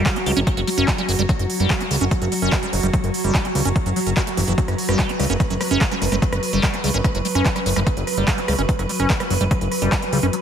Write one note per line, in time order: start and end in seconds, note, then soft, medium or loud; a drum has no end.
0.00 10.41 F#3 medium
0.00 0.18 G3 medium
0.00 4.60 F#4 medium
0.06 kick loud
0.06 clap loud
0.06 closed hi-hat medium
0.16 0.18 F#4 loud
0.16 closed hi-hat medium
0.26 0.33 C#2 medium
0.26 0.32 G3 medium
0.26 open hi-hat loud
0.37 0.44 F#1 medium
0.37 0.40 C#4 loud
0.37 closed hi-hat medium
0.47 0.49 F#3 medium
0.47 kick loud
0.47 closed hi-hat medium
0.57 0.64 F#1 medium
0.57 0.61 F#3 medium
0.57 closed hi-hat medium
0.67 0.70 G3 medium
0.67 open hi-hat loud
0.78 0.85 F#1 medium
0.78 0.90 C#4 loud
0.78 closed hi-hat medium
0.88 0.92 F#3 loud
0.88 kick loud
0.88 clap loud
0.88 closed hi-hat medium
0.98 1.02 G3 medium
0.98 closed hi-hat medium
1.09 1.15 F#1 medium
1.09 1.12 F#3 medium
1.09 open hi-hat loud
1.19 1.26 F#1 medium
1.19 1.22 G3 loud
1.19 closed hi-hat medium
1.29 1.31 F#3 medium
1.29 kick loud
1.29 closed hi-hat medium
1.39 1.46 F#1 medium
1.39 closed hi-hat medium
1.50 open hi-hat loud
1.60 1.67 F#1 medium
1.60 1.82 G3 medium
1.60 closed hi-hat soft
1.70 kick loud
1.70 clap loud
1.70 closed hi-hat medium
1.80 1.83 F#4 loud
1.80 closed hi-hat medium
1.91 1.98 C#2 loud
1.91 1.96 G3 medium
1.91 open hi-hat loud
2.01 2.08 F#1 medium
2.01 2.05 C#4 loud
2.01 closed hi-hat soft
2.11 2.14 F#3 medium
2.11 kick loud
2.11 closed hi-hat medium
2.22 2.28 F#1 medium
2.22 2.25 F#3 medium
2.22 closed hi-hat medium
2.32 2.34 G3 medium
2.32 open hi-hat loud
2.42 2.49 F#1 medium
2.42 2.54 C#4 loud
2.42 closed hi-hat medium
2.52 2.56 F#3 loud
2.52 kick loud
2.52 clap loud
2.52 closed hi-hat medium
2.63 2.66 G3 medium
2.63 closed hi-hat medium
2.73 2.80 F#1 medium
2.73 2.77 F#3 medium
2.73 open hi-hat loud
2.83 2.90 F#1 medium
2.83 2.87 G3 loud
2.83 closed hi-hat soft
2.94 2.96 F#3 medium
2.94 kick loud
2.94 closed hi-hat medium
3.04 3.11 F#1 medium
3.04 closed hi-hat medium
3.14 open hi-hat loud
3.24 3.31 F#1 medium
3.24 3.46 G3 medium
3.24 closed hi-hat soft
3.35 kick loud
3.35 clap loud
3.35 closed hi-hat medium
3.45 3.47 F#4 loud
3.45 closed hi-hat soft
3.55 3.62 C#2 medium
3.55 3.61 G3 medium
3.55 open hi-hat loud
3.65 3.72 F#1 medium
3.65 3.69 C#4 loud
3.65 closed hi-hat medium
3.76 3.78 F#3 medium
3.76 kick loud
3.76 closed hi-hat medium
3.86 3.93 F#1 medium
3.86 3.90 F#3 medium
3.86 closed hi-hat soft
3.96 4.00 F#3 medium
3.96 open hi-hat loud
4.07 4.13 F#1 medium
4.07 4.10 C#4 medium
4.07 closed hi-hat soft
4.17 4.22 F#4 loud
4.17 kick loud
4.17 clap loud
4.17 closed hi-hat medium
4.27 4.29 A3 loud
4.27 closed hi-hat medium
4.37 4.44 F#1 medium
4.37 4.41 E3 loud
4.37 open hi-hat loud
4.48 4.54 F#1 medium
4.48 4.53 E3 medium
4.48 closed hi-hat medium
4.58 4.60 F#3 medium
4.58 10.41 B4 medium
4.58 kick loud
4.58 closed hi-hat medium
4.68 4.75 F#1 medium
4.68 cross-stick soft
4.68 closed hi-hat soft
4.78 open hi-hat loud
4.89 4.96 F#1 medium
4.89 5.11 G3 medium
4.89 cross-stick medium
4.89 closed hi-hat soft
4.99 kick loud
4.99 clap loud
4.99 closed hi-hat medium
5.09 5.11 F#4 loud
5.09 closed hi-hat medium
5.19 5.26 C#2 loud
5.19 5.25 G3 medium
5.19 cross-stick soft
5.19 open hi-hat loud
5.30 5.37 F#1 medium
5.30 5.33 C#4 loud
5.30 closed hi-hat medium
5.40 5.42 F#3 medium
5.40 kick loud
5.40 cross-stick soft
5.40 closed hi-hat medium
5.50 5.57 F#1 medium
5.50 5.54 F#3 medium
5.50 closed hi-hat medium
5.61 5.63 G3 medium
5.61 cross-stick medium
5.61 open hi-hat loud
5.71 5.78 F#1 medium
5.71 5.83 C#4 loud
5.71 closed hi-hat medium
5.81 5.85 F#3 loud
5.81 kick loud
5.81 clap loud
5.81 closed hi-hat medium
5.91 5.95 G3 medium
5.91 cross-stick soft
5.91 closed hi-hat medium
6.02 6.09 F#1 medium
6.02 6.05 F#3 medium
6.02 open hi-hat loud
6.12 6.19 F#1 medium
6.12 6.16 G3 loud
6.12 cross-stick soft
6.12 closed hi-hat soft
6.22 6.24 F#3 medium
6.22 kick loud
6.22 closed hi-hat medium
6.33 6.39 F#1 medium
6.33 cross-stick medium
6.33 closed hi-hat medium
6.43 open hi-hat loud
6.53 6.60 F#1 medium
6.53 6.75 G3 medium
6.53 closed hi-hat soft
6.63 kick loud
6.63 cross-stick soft
6.63 clap loud
6.63 closed hi-hat medium
6.74 6.76 F#4 loud
6.74 closed hi-hat medium
6.84 6.91 C#2 medium
6.84 6.89 G3 medium
6.84 open hi-hat loud
6.94 7.01 F#1 medium
6.94 6.98 C#4 loud
6.94 closed hi-hat medium
7.04 7.07 F#3 medium
7.04 kick loud
7.04 cross-stick medium
7.04 closed hi-hat medium
7.15 7.22 F#1 medium
7.15 7.18 F#3 medium
7.15 closed hi-hat medium
7.25 7.27 G3 medium
7.25 open hi-hat loud
7.35 7.42 F#1 medium
7.35 7.47 C#4 loud
7.35 cross-stick soft
7.35 closed hi-hat medium
7.46 7.49 F#3 loud
7.46 kick loud
7.46 clap loud
7.46 closed hi-hat medium
7.56 7.59 G3 medium
7.56 cross-stick soft
7.56 closed hi-hat medium
7.66 7.73 F#1 medium
7.66 7.70 F#3 medium
7.66 open hi-hat loud
7.76 7.83 F#1 medium
7.76 7.80 G3 loud
7.76 cross-stick medium
7.76 closed hi-hat soft
7.87 7.89 F#3 medium
7.87 kick loud
7.87 closed hi-hat medium
7.97 8.04 F#1 medium
7.97 closed hi-hat medium
8.07 cross-stick soft
8.07 open hi-hat loud
8.17 8.24 F#1 medium
8.17 8.39 G3 medium
8.17 closed hi-hat medium
8.28 kick loud
8.28 cross-stick soft
8.28 clap loud
8.28 closed hi-hat medium
8.38 8.40 F#4 loud
8.38 closed hi-hat medium
8.48 8.55 C#2 medium
8.48 8.54 G3 medium
8.48 cross-stick medium
8.48 open hi-hat loud
8.59 8.65 F#1 medium
8.59 8.62 C#4 loud
8.59 closed hi-hat medium
8.69 8.71 F#3 medium
8.69 kick loud
8.69 closed hi-hat medium
8.79 8.86 F#1 medium
8.79 8.83 F#3 medium
8.79 cross-stick soft
8.79 closed hi-hat medium
8.89 8.92 G3 medium
8.89 open hi-hat loud
9.00 9.06 F#1 medium
9.00 9.11 C#4 loud
9.00 cross-stick soft
9.00 closed hi-hat medium
9.10 9.14 F#3 loud
9.10 kick loud
9.10 clap loud
9.10 closed hi-hat medium
9.20 9.24 G3 medium
9.20 cross-stick medium
9.20 closed hi-hat medium
9.30 9.37 F#1 medium
9.30 9.34 F#3 medium
9.30 open hi-hat loud
9.41 9.48 F#1 medium
9.41 9.44 G3 loud
9.41 closed hi-hat medium
9.51 9.53 F#3 medium
9.51 kick loud
9.51 cross-stick soft
9.51 closed hi-hat medium
9.61 9.68 F#1 medium
9.61 closed hi-hat medium
9.72 cross-stick soft
9.72 open hi-hat loud
9.82 9.89 F#1 medium
9.82 10.04 G3 medium
9.82 closed hi-hat medium
9.92 kick loud
9.92 cross-stick medium
9.92 clap loud
9.92 closed hi-hat medium
10.02 10.05 F#4 loud
10.02 closed hi-hat medium
10.13 10.20 C#2 medium
10.13 10.18 G3 medium
10.13 open hi-hat loud
10.23 10.30 F#1 medium
10.23 10.27 C#4 loud
10.23 cross-stick soft
10.23 closed hi-hat medium
10.33 10.35 F#3 medium
10.33 closed hi-hat medium